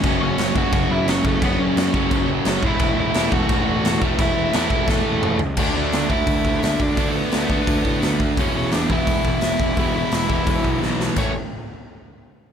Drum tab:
CC |x-x-x-x-|x-x-x-x-|x-x-x-x-|x-x-----|
HH |--------|--------|--------|--------|
SD |--o---o-|--o---o-|--o---o-|--o-o---|
T2 |--------|--------|--------|------o-|
FT |--------|--------|--------|-------o|
BD |o--oo--o|o--oo--o|o--oo--o|o--oo---|

CC |x-------|--------|--------|--------|
HH |--o-o-o-|o-o-o-o-|o-o-o-o-|o-o-o---|
SD |--o---o-|--o---o-|--o---o-|--o---oo|
T2 |--------|--------|--------|--------|
FT |--------|--------|--------|--------|
BD |o--ooo-o|o--ooo-o|o--ooo-o|o--ooo--|

CC |x-------|
HH |--------|
SD |--------|
T2 |--------|
FT |--------|
BD |o-------|